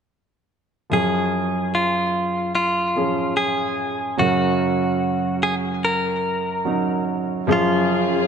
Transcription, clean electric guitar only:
0.93 G#4
1.75 F4
2.55 F4
3.37 G#4
4.19 F#4
5.43 G#4
5.85 A#4
7.53 F4

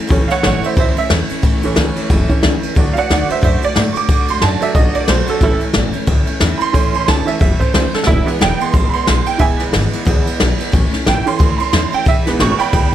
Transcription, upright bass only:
0.11 A1
0.31 muted upright bass stroke
0.45 A1
0.65 muted upright bass stroke
0.77 D2
0.97 muted upright bass stroke
1.10 E2
1.30 muted upright bass stroke
1.43 A1
1.63 A1
1.76 C#2
1.97 muted upright bass stroke
2.10 F#1
2.44 C#2
2.64 muted upright bass stroke
2.77 D2
2.97 muted upright bass stroke
3.10 D2
3.30 muted upright bass stroke
3.43 F#2
3.64 muted upright bass stroke
3.77 A2
3.96 muted upright bass stroke
4.09 D2
4.28 D2
4.43 F#2
4.62 muted upright bass stroke
4.75 B1
4.95 muted upright bass stroke
5.08 B1
5.28 muted upright bass stroke
5.41 A1
5.61 muted upright bass stroke
5.75 A1
5.95 muted upright bass stroke
6.07 D2
6.29 muted upright bass stroke
6.41 E2
6.60 muted upright bass stroke
6.74 A1
6.94 A1
7.08 C#2
7.28 muted upright bass stroke
7.42 F#1
7.74 C#2
7.94 muted upright bass stroke
8.07 E1
8.27 muted upright bass stroke
8.41 E1
8.74 A1
8.94 muted upright bass stroke
9.08 B1
9.40 E1
9.60 E1
9.74 G#1
9.94 muted upright bass stroke
10.07 D2
10.27 muted upright bass stroke
10.41 B1
10.60 muted upright bass stroke
10.74 A1
10.93 muted upright bass stroke
11.07 A1
11.25 muted upright bass stroke
11.40 D2
11.59 muted upright bass stroke
11.73 E2
11.93 muted upright bass stroke
12.06 E1
12.26 E1
12.39 G#1
12.59 muted upright bass stroke
12.73 D2

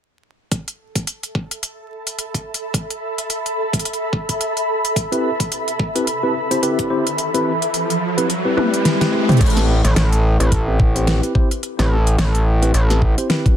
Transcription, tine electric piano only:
5.12 C4 E4 G4 B4
5.95 C4 E4 G4 B4
6.23 C4 E4 G4 B4
6.51 C4 E4 G4 C5
6.62 C4 E4 G4 B4
6.90 C4 E4 G4 C5
7.34 C4 E4 G4 B4
8.17 C4 E4 G4 B4
8.45 C4 E4 G4 B4
8.57 C4 E4 G4 B4
9.01 C4 E4 G4 B4
9.12 C4 E4 G4 B4
9.29 C4 E4 G4 C5
9.57 C4 E4 G4 B4
10.40 C4 E4 G4 B4
10.67 C4 E4 G4 B4
10.95 C4 E4 G4 C5
11.07 C4 E4 G4 B4
11.35 C4 E4 G4 C5
11.79 C4 E4 G4 B4
12.62 C4 E4 G4 B4
12.90 C4 E4 G4 B4
13.18 C4 E4 G4 C5
13.30 C4 E4 G4 B4

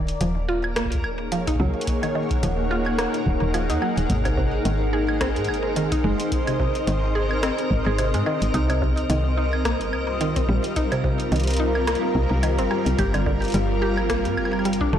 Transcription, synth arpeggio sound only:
0.21 F3
0.49 F4
0.76 A#3
1.32 F3
1.47 D#4
1.60 F#3
2.03 D#3
2.15 D#3
2.43 F3
2.71 F4
2.99 A#3
3.54 F3
3.70 D#4
3.82 F#3
4.25 C3
4.37 C3
4.65 D#3
4.93 G#4
5.21 C4
5.76 D#3
5.92 D#4
6.04 G#3
6.47 C3
6.60 C3
6.87 D#3
7.15 G#4
7.43 C4
7.86 G#4
7.99 C3
8.14 G#3
8.26 D#3
8.54 D#4
8.70 C3
8.82 C3
9.10 D#3
9.37 D#4
9.65 A#3
10.21 D#3
10.36 C4
10.49 G3
10.76 D#4
10.92 C3
11.04 C3
11.32 D#3
11.60 D#4
11.87 A#3
12.43 D#3
12.58 C4
12.71 G3
12.98 G4
13.14 D3
13.26 D3
13.54 G3
13.82 G4
14.10 A#3
14.65 G3
14.81 D4
14.93 A3

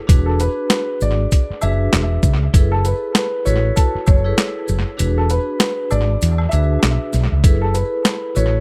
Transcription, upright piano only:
0.26 A4
0.41 B4
0.71 B4
1.02 D5
1.62 E5
2.72 A4
2.85 B4
3.15 B4
3.45 C#5
3.76 A4
4.08 C#5
5.18 A4
5.31 B4
5.60 B4
5.91 D5
6.49 E5
7.62 A4
7.74 B4
8.06 B4
8.36 C#5

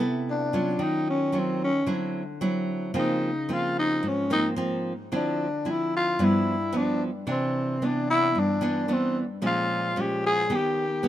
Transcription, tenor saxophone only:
0.30 D4
0.83 D#4
1.10 C#4
1.39 C4
1.64 C#4
2.99 D#4
3.54 F4
3.79 D#4
4.08 C#4
4.33 D#4
5.16 D4
5.71 E4
5.96 F4
6.24 E4
6.78 D4
7.31 C4
7.86 D4
8.10 E4
8.39 D4
8.93 C4
9.46 F4
10.00 G4
10.26 G#4
10.55 G4

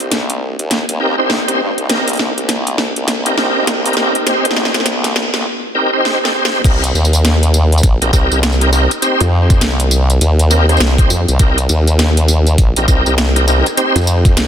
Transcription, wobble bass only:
0.00 C2
0.59 D#2
0.89 D#2
1.18 C2
1.59 G2
1.78 C2
1.89 C2
2.37 C2
2.97 C2
3.56 C2
4.45 A#1
4.75 C2
5.35 C2
6.64 C2
6.94 D#2
7.83 A#1
8.01 A#1
8.13 C2
8.31 C2
9.21 F2
9.61 C2
10.21 D#2
10.80 C2
11.10 F2
11.28 C2
11.40 C2
11.69 D#2
12.58 A#1
12.77 A#1
12.88 C2
13.06 C2
13.95 F2
14.37 C2

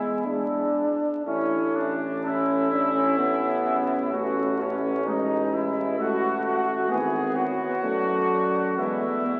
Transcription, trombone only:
Already playing: G#3
0.26 D4
1.27 E4
2.24 C#4
2.71 D4
2.95 C#4
3.18 B3
4.12 A3
5.07 G#3
5.99 A3
6.90 B3
7.83 A3
8.79 G#3
9.02 A3
9.25 B3

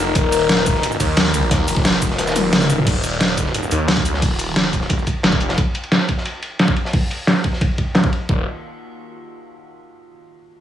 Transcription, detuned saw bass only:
Already playing: F1
0.15 D#1
1.00 D#2
1.51 D#2
1.68 F1
2.19 D#1
2.87 D#1
3.71 D#2
4.22 D#1
5.24 F1
8.29 D#1

